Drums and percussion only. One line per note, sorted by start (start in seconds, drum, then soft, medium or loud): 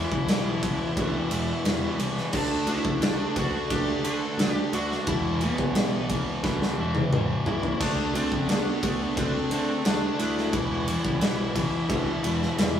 0.12 kick medium
0.28 snare loud
0.28 ride loud
0.63 kick medium
0.63 ride medium
0.97 kick loud
0.97 ride loud
1.31 ride medium
1.65 snare loud
1.65 ride loud
2.00 ride medium
2.17 snare soft
2.33 kick loud
2.33 crash loud
2.67 ride medium
2.85 kick medium
3.02 snare loud
3.02 ride loud
3.36 kick loud
3.36 ride medium
3.70 kick loud
3.70 ride loud
4.05 ride medium
4.39 snare loud
4.39 ride loud
4.73 ride medium
4.91 snare soft
5.07 kick loud
5.07 ride loud
5.41 ride medium
5.58 kick medium
5.75 snare loud
5.75 ride loud
6.09 kick loud
6.09 ride medium
6.44 kick loud
6.44 snare medium
6.62 snare medium
6.95 high tom medium
7.13 mid tom loud
7.46 floor tom loud
7.63 floor tom loud
7.81 kick loud
7.81 crash loud
7.81 ride loud
8.15 ride medium
8.32 kick medium
8.49 snare loud
8.49 ride loud
8.83 kick loud
8.83 ride medium
9.17 kick loud
9.17 ride loud
9.51 ride medium
9.85 snare loud
9.85 ride loud
10.20 ride medium
10.37 snare soft
10.53 kick loud
10.53 ride loud
10.88 ride medium
11.05 kick medium
11.21 snare loud
11.21 ride loud
11.56 kick medium
11.56 ride medium
11.90 kick loud
11.90 ride loud
12.24 ride medium
12.42 snare soft
12.58 snare loud
12.58 ride loud